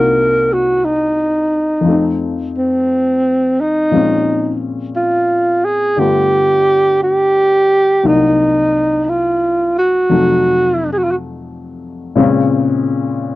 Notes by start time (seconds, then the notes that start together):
Already playing: C2 C3 A#3 D#4 F#4 A#4
0.52 F#4
0.85 D#4
1.81 F2 F3
1.87 A3 C4
1.92 D#4
2.58 C4
3.61 D#4
3.91 A#2 F3 G#3
3.95 C4 C#4
4.96 F4
5.65 G#4
5.96 G2 D3 A3 B3 G4
6.01 F4
7.03 G4
8.03 C2 C3 F#3 A#3 D#4
9.04 D#4
9.09 F4
9.78 F#4
10.10 F2 C3 F#3 A3 D#4
10.92 G#4
10.97 F#4
11.04 F4
11.11 F#4
12.15 A#2 C#3 G#3 C4 C#4